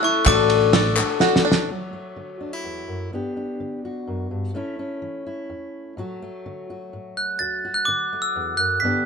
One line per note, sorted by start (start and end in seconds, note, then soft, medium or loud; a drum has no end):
0.00 0.26 A3 medium
0.00 0.26 C#4 medium
0.00 0.27 E4 medium
0.00 0.26 E4 medium
0.00 0.27 A4 medium
0.04 0.28 C#6 medium
0.26 0.99 A1 loud
0.26 0.73 A2 medium
0.26 0.74 D3 medium
0.26 0.72 A3 medium
0.26 0.73 D4 medium
0.26 0.74 F#4 loud
0.26 0.72 A4 loud
0.26 0.74 A4 medium
0.26 1.17 D6 medium
0.26 kick loud
0.26 clap loud
0.26 ride medium
0.50 clap soft
0.50 ride medium
0.61 clap soft
0.73 0.97 A3 medium
0.73 0.97 D4 medium
0.73 0.97 F#4 medium
0.73 1.20 A4 medium
0.73 0.95 A4 medium
0.73 snare medium
0.73 ride medium
0.97 1.18 A3 soft
0.97 1.19 D4 soft
0.97 1.20 F#4 medium
0.97 1.21 A4 medium
0.97 clap loud
1.09 clap soft
1.19 1.68 A3 medium
1.19 1.68 D4 medium
1.19 1.44 F#4 medium
1.19 1.69 F#4 medium
1.19 1.69 A4 medium
1.19 snare medium
1.36 snare medium
1.45 1.68 D4 medium
1.52 snare medium
1.69 2.11 D2 soft
1.69 3.11 F#3 soft
1.69 1.92 A3 soft
1.69 2.40 F#4 soft
1.93 3.11 A3 soft
2.16 2.59 D3 soft
2.41 2.53 D4 soft
2.53 3.12 E4 soft
2.64 2.87 E2 soft
2.88 3.11 F#2 soft
3.13 3.55 G2 soft
3.13 4.52 B3 soft
3.13 3.36 D4 soft
3.13 3.84 G4 soft
3.37 4.52 D4 soft
3.60 4.02 D3 soft
3.85 4.52 F#4 soft
4.07 4.30 F#2 soft
4.31 4.54 G2 soft
4.54 4.97 A2 medium
4.54 5.98 A3 soft
4.54 4.78 C#4 soft
4.54 5.25 E4 soft
4.79 5.95 C#4 soft
5.02 5.45 E3 soft
5.26 5.95 E4 soft
5.50 5.92 E2 soft
5.97 6.40 A2 medium
5.97 8.83 F#3 soft
5.97 6.21 A3 soft
5.97 6.69 F#4 soft
6.22 8.12 A3 soft
6.46 6.88 D3 soft
6.70 7.38 F#4 soft
6.93 7.36 A2 soft
7.17 7.39 F#6 medium
7.39 7.83 D2 medium
7.39 7.76 A6 medium
7.65 8.80 F#4 soft
7.74 7.86 F#6 medium
7.85 8.31 D3 soft
7.85 8.20 D6 medium
8.13 8.83 A3 soft
8.22 8.45 E6 medium
8.36 8.59 E2 soft
8.57 8.82 F#2 soft
8.57 8.83 F#6 medium
8.80 9.06 G2 medium
8.80 9.06 D3 soft
8.80 9.06 B6 medium
8.84 9.06 B3 medium
8.84 9.06 D4 medium
8.84 9.06 G4 medium